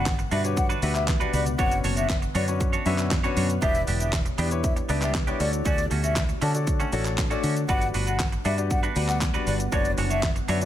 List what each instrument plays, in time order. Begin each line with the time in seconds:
Already playing: fingered electric bass G1, ambient pad B2 D3 G3 B3 F#5, grand piano D4 F#4 G4 B4 D5, flute F#5
0.06 kick, snare, clap, closed hi-hat, shaker
0.19 muted clean electric guitar stroke, closed hi-hat, shaker
0.31 fingered electric bass G2, clean electric guitar D4 F#4 B4, grand piano D4 F#4 G4 B4 D5, flute E5, open hi-hat, shaker
0.44 grand piano D4 F#4 G4 B4 C#5, muted clean electric guitar stroke, closed hi-hat, shaker
0.57 flute F#5, muted clean electric guitar stroke, kick, closed hi-hat, shaker
0.69 clean electric guitar D4 F#4 B4, closed hi-hat, shaker
0.82 fingered electric bass D2, clean electric guitar D4 F#4 B4, grand piano D4 F#4 G4 B4 E5, open hi-hat, shaker
0.95 flute E5, muted clean electric guitar stroke, clap, closed hi-hat, shaker
1.08 muted clean electric guitar stroke, kick, snare, clap, closed hi-hat, shaker
1.20 grand piano D4 F#4 G4 B4 D5, clean electric guitar D4 F#4 B4, closed hi-hat, shaker
1.33 fingered electric bass C#2, clean electric guitar D4 F#4 B4, flute D5, open hi-hat, shaker
1.46 muted clean electric guitar stroke, closed hi-hat, shaker
1.58 fingered electric bass F#1, grand piano C#4 D4 F#4 B4 C#5, clean electric guitar D4 F#4 C#5, ambient pad C#5, flute F#5, kick, closed hi-hat, shaker
1.71 closed hi-hat, shaker
1.84 fingered electric bass F#1, clean electric guitar D4 F#4 C#5, open hi-hat, shaker
1.97 clean electric guitar D4 F#4 C#5, flute E5, closed hi-hat, shaker
2.09 kick, snare, clap, closed hi-hat, shaker
2.22 muted clean electric guitar stroke, closed hi-hat, shaker
2.35 fingered electric bass F#2, grand piano C#4 D4 F#4 B4 C#5, clean electric guitar D4 F#4 C#5, flute D5, open hi-hat, shaker
2.48 grand piano C#4 D4 F#4 B4 C#5, muted clean electric guitar stroke, closed hi-hat, shaker
2.60 muted clean electric guitar stroke, kick, closed hi-hat, shaker
2.73 clean electric guitar D4 F#4 C#5, closed hi-hat, shaker
2.86 fingered electric bass F#2, grand piano C#4 D4 F#4 B4 E5, clean electric guitar D4 F#4 C#5, open hi-hat, shaker
2.98 muted clean electric guitar stroke, clap, closed hi-hat, shaker
3.11 muted clean electric guitar stroke, kick, snare, clap, closed hi-hat, shaker
3.24 grand piano C#4 D4 F#4 B4 C#5, clean electric guitar D4 F#4 C#5, closed hi-hat, shaker
3.36 fingered electric bass F#2, clean electric guitar D4 F#4 C#5, open hi-hat, shaker
3.50 closed hi-hat, shaker
3.62 fingered electric bass E1, ambient pad G3 E4 G4, clean electric guitar B3 D4 G4, grand piano D4 E4 G4 B4 D5, flute E5, kick, closed hi-hat, shaker
3.75 closed hi-hat, shaker
3.87 fingered electric bass E1, clean electric guitar B3 D4 G4, open hi-hat, shaker
4.00 clean electric guitar B3 D4 G4, flute E5, closed hi-hat, shaker
4.13 muted clean electric guitar stroke, kick, snare, clap, closed hi-hat, shaker
4.25 muted clean electric guitar stroke, closed hi-hat, shaker
4.38 fingered electric bass E2, clean electric guitar B3 D4 G4, grand piano D4 E4 G4 B4 D5, flute D5, open hi-hat, shaker
4.51 grand piano D4 E4 G4 B4 C#5, muted clean electric guitar stroke, closed hi-hat, shaker
4.64 flute E5, muted clean electric guitar stroke, kick, closed hi-hat, shaker
4.76 muted clean electric guitar stroke, closed hi-hat, shaker
4.89 fingered electric bass C#2, clean electric guitar B3 D4 G4, grand piano D4 E4 G4 B4 D5, open hi-hat, shaker
5.02 clean electric guitar B3 D4 G4, flute E5, clap, closed hi-hat, shaker
5.15 kick, snare, clap, closed hi-hat, shaker
5.27 clean electric guitar B3 D4 G4, grand piano D4 E4 G4 B4 C#5, closed hi-hat, shaker
5.40 fingered electric bass D2, clean electric guitar A3 C#4 F#4, ambient pad A3 D4 F#4, grand piano D4 F#4 A4 C#5 D5, flute D5, open hi-hat, shaker
5.53 closed hi-hat, shaker
5.65 fingered electric bass D2, clean electric guitar A3 C#4 F#4, flute D5, kick, closed hi-hat, shaker
5.78 closed hi-hat, shaker
5.91 fingered electric bass D2, clean electric guitar A3 C#4 F#4, open hi-hat, shaker
6.03 clean electric guitar A3 C#4 F#4, flute E5, closed hi-hat, shaker
6.16 kick, snare, clap, closed hi-hat, shaker
6.29 muted clean electric guitar stroke, closed hi-hat, shaker
6.41 fingered electric bass D3, clean electric guitar A3 C#4 F#4, grand piano D4 F#4 A4 C#5 D5, flute A5, open hi-hat, shaker
6.54 grand piano D4 F#4 A4 C#5 D5, muted clean electric guitar stroke, closed hi-hat, shaker
6.67 muted clean electric guitar stroke, kick, closed hi-hat, shaker
6.80 clean electric guitar A3 C#4 F#4, closed hi-hat, shaker
6.92 fingered electric bass A1, clean electric guitar A3 C#4 F#4, grand piano D4 F#4 A4 C#5 D5, open hi-hat, shaker
7.05 muted clean electric guitar stroke, clap, shaker
7.18 muted clean electric guitar stroke, kick, snare, clap, closed hi-hat, shaker
7.30 clean electric guitar A3 C#4 F#4, grand piano D4 F#4 A4 C#5 D5, closed hi-hat, shaker
7.43 fingered electric bass D3, clean electric guitar A3 C#4 F#4, open hi-hat, shaker
7.56 muted clean electric guitar stroke, closed hi-hat, shaker
7.69 fingered electric bass G1, ambient pad D3 G3 B3 F#5, clean electric guitar D4 F#4 B4, grand piano D4 F#4 G4 B4 D5, flute F#5, kick, closed hi-hat, shaker
7.82 closed hi-hat, shaker
7.94 fingered electric bass G1, clean electric guitar D4 F#4 B4, open hi-hat, shaker
8.07 clean electric guitar D4 F#4 B4, flute F#5, closed hi-hat, shaker
8.20 kick, snare, clap, closed hi-hat, shaker
8.32 muted clean electric guitar stroke, closed hi-hat, shaker
8.45 fingered electric bass G2, grand piano D4 F#4 G4 B4 D5, clean electric guitar D4 F#4 B4, flute E5, open hi-hat, shaker
8.58 grand piano D4 F#4 G4 B4 D5, muted clean electric guitar stroke, closed hi-hat, shaker
8.70 flute F#5, muted clean electric guitar stroke, kick, closed hi-hat, shaker
8.83 clean electric guitar D4 F#4 B4, closed hi-hat, shaker
8.96 fingered electric bass D2, grand piano D4 F#4 G4 B4 D5, clean electric guitar D4 F#4 B4, open hi-hat, shaker
9.09 flute F#5, muted clean electric guitar stroke, clap, closed hi-hat, shaker
9.21 muted clean electric guitar stroke, kick, snare, clap, closed hi-hat, shaker
9.34 grand piano D4 F#4 G4 B4 D5, clean electric guitar D4 F#4 B4, closed hi-hat, shaker
9.47 fingered electric bass G1, clean electric guitar D4 F#4 B4, flute D5, open hi-hat, shaker
9.60 muted clean electric guitar stroke, closed hi-hat, shaker
9.72 fingered electric bass F#1, ambient pad B3 D4, grand piano D4 F#4 B4 C#5 D5, clean electric guitar D4 F#4 C#5, flute D5, kick, closed hi-hat, shaker
9.85 closed hi-hat, shaker
9.97 fingered electric bass F#1, clean electric guitar D4 F#4 C#5, open hi-hat, shaker
10.10 clean electric guitar D4 F#4 C#5, flute E5, closed hi-hat, shaker
10.23 kick, snare, clap, closed hi-hat, shaker
10.36 muted clean electric guitar stroke, closed hi-hat, shaker
10.48 fingered electric bass F#2, clean electric guitar D4 F#4 C#5, grand piano D4 F#4 B4 C#5 E5, flute D5, open hi-hat, shaker
10.61 grand piano D4 F#4 B4 C#5 D5, closed hi-hat, shaker